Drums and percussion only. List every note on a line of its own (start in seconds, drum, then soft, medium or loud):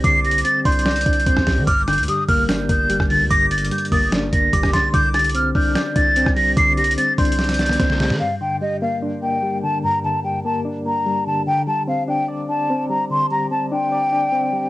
0.04 kick loud
0.04 closed hi-hat medium
0.24 closed hi-hat soft
0.31 closed hi-hat medium
0.38 closed hi-hat medium
0.45 closed hi-hat medium
0.65 kick loud
0.65 closed hi-hat medium
0.65 open hi-hat medium
0.72 closed hi-hat medium
0.79 closed hi-hat medium
0.86 snare loud
0.86 closed hi-hat soft
0.91 closed hi-hat medium
0.96 closed hi-hat medium
1.01 closed hi-hat medium
1.06 kick loud
1.06 closed hi-hat medium
1.13 closed hi-hat medium
1.20 closed hi-hat medium
1.26 kick loud
1.26 closed hi-hat medium
1.37 kick loud
1.37 cross-stick medium
1.37 snare medium
1.47 kick medium
1.47 snare loud
1.47 open hi-hat medium
1.67 kick loud
1.67 closed hi-hat medium
1.88 cross-stick medium
1.88 closed hi-hat medium
1.93 closed hi-hat medium
1.98 closed hi-hat medium
2.03 closed hi-hat medium
2.08 closed hi-hat medium
2.29 kick loud
2.29 open hi-hat medium
2.49 snare loud
2.49 closed hi-hat medium
2.69 kick loud
2.69 closed hi-hat medium
2.90 closed hi-hat medium
3.00 kick loud
3.00 cross-stick medium
3.10 open hi-hat medium
3.31 kick loud
3.31 closed hi-hat medium
3.51 closed hi-hat medium
3.58 closed hi-hat medium
3.65 closed hi-hat medium
3.71 closed hi-hat medium
3.78 closed hi-hat medium
3.85 closed hi-hat soft
3.92 kick loud
3.92 open hi-hat medium
4.12 snare loud
4.12 closed hi-hat medium
4.33 kick loud
4.33 closed hi-hat medium
4.53 kick loud
4.53 closed hi-hat medium
4.63 kick medium
4.63 cross-stick loud
4.63 snare medium
4.73 kick medium
4.73 snare medium
4.73 closed hi-hat medium
4.94 kick loud
4.94 closed hi-hat medium
5.14 cross-stick medium
5.14 closed hi-hat medium
5.19 closed hi-hat medium
5.24 closed hi-hat medium
5.30 closed hi-hat medium
5.35 closed hi-hat medium
5.55 kick loud
5.55 open hi-hat medium
5.75 snare loud
5.75 closed hi-hat medium
5.96 kick loud
5.96 closed hi-hat medium
6.16 closed hi-hat medium
6.27 kick loud
6.27 cross-stick medium
6.37 open hi-hat medium
6.57 kick loud
6.57 closed hi-hat medium
6.78 closed hi-hat soft
6.84 closed hi-hat medium
6.91 closed hi-hat medium
6.98 closed hi-hat medium
7.18 kick loud
7.18 closed hi-hat medium
7.18 open hi-hat medium
7.25 closed hi-hat medium
7.32 closed hi-hat medium
7.39 snare medium
7.39 closed hi-hat soft
7.44 closed hi-hat medium
7.49 snare medium
7.49 closed hi-hat medium
7.54 closed hi-hat medium
7.59 snare medium
7.59 closed hi-hat medium
7.66 snare medium
7.66 closed hi-hat medium
7.73 closed hi-hat medium
7.80 kick loud
7.80 snare medium
7.80 closed hi-hat medium
7.90 snare medium
8.00 snare loud
8.00 open hi-hat medium
8.10 snare loud